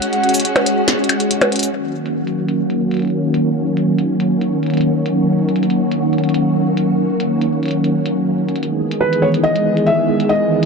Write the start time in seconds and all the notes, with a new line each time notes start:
Already playing: G#3 C#4 F#4 F#5
0.02 closed hi-hat
0.13 closed hi-hat
0.24 closed hi-hat
0.29 closed hi-hat
0.34 closed hi-hat, shaker
0.40 closed hi-hat
0.45 closed hi-hat
0.56 closed hi-hat, percussion blips
0.66 closed hi-hat
0.88 snare, closed hi-hat
1.04 closed hi-hat
1.09 closed hi-hat, percussion blips
1.20 closed hi-hat
1.31 closed hi-hat
1.41 closed hi-hat, percussion blips
1.52 closed hi-hat
1.56 closed hi-hat
1.59 closed hi-hat
1.63 closed hi-hat, shaker
1.74 D#3 F#3 A#3 C#4 F#4
2.06 closed hi-hat
2.27 closed hi-hat
2.49 closed hi-hat
2.70 closed hi-hat
2.91 closed hi-hat
2.94 closed hi-hat
2.97 closed hi-hat
2.99 closed hi-hat
3.02 closed hi-hat
3.05 closed hi-hat
3.07 closed hi-hat
3.10 closed hi-hat
3.34 closed hi-hat
3.77 closed hi-hat
3.99 closed hi-hat
4.20 closed hi-hat
4.41 closed hi-hat
4.63 closed hi-hat
4.66 closed hi-hat
4.70 closed hi-hat
4.74 closed hi-hat
4.77 closed hi-hat
4.81 closed hi-hat
5.06 closed hi-hat
5.49 closed hi-hat
5.56 closed hi-hat
5.63 closed hi-hat
5.70 closed hi-hat
5.92 closed hi-hat
6.13 closed hi-hat
6.18 closed hi-hat
6.24 closed hi-hat
6.29 closed hi-hat
6.34 closed hi-hat
6.77 closed hi-hat
7.20 closed hi-hat
7.41 closed hi-hat
7.63 closed hi-hat
7.66 closed hi-hat
7.68 closed hi-hat
7.71 closed hi-hat
7.84 closed hi-hat
8.06 closed hi-hat
8.49 closed hi-hat
8.56 D#3 E3 G#3 B3 G#4, closed hi-hat
8.63 closed hi-hat
8.91 closed hi-hat
9.01 B4
9.13 closed hi-hat
9.22 C#5
9.34 closed hi-hat
9.44 D#5
9.56 closed hi-hat
9.77 closed hi-hat
9.86 E5
10.20 closed hi-hat
10.29 D#5